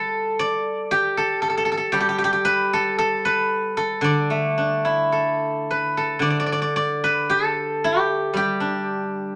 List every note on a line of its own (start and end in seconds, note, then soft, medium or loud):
0.00 0.92 G3 soft
0.00 0.11 G4 medium
0.00 1.17 A4 medium
0.00 1.41 B4 medium
0.39 2.24 D5 medium
0.91 1.92 G4 medium
1.17 1.41 A4 medium
1.42 1.49 A4 medium
1.50 1.57 A4 soft
1.57 1.65 A4 medium
1.65 1.71 A4 soft
1.72 1.77 A4 medium
1.77 2.73 A4 soft
1.92 5.11 G3 soft
1.92 2.00 G4 medium
2.00 2.08 G4 medium
2.09 2.18 G4 medium
2.18 2.24 G4 medium
2.24 2.32 G4 medium
2.33 4.68 G4 medium
2.45 3.25 B4 medium
2.73 2.98 A4 medium
2.98 3.77 A4 medium
3.25 5.30 B4 medium
3.77 5.12 A4 medium
4.01 6.18 D3 soft
4.01 5.89 D5 medium
4.30 6.49 A3 soft
4.58 6.76 D4 soft
4.85 7.03 E4 soft
5.12 5.96 A4 soft
5.71 7.03 B4 medium
5.97 7.29 A4 soft
6.19 9.36 D3 soft
6.19 6.30 D5 medium
6.30 6.39 D5 soft
6.40 6.46 D5 medium
6.46 6.52 D5 soft
6.52 6.61 D5 medium
6.62 6.76 D5 medium
6.76 8.61 D5 medium
7.04 9.08 B4 medium
7.30 9.36 A4 medium
7.84 8.36 G4 medium
8.34 9.36 G3 soft
8.34 9.36 G4 medium
8.60 9.36 D4 soft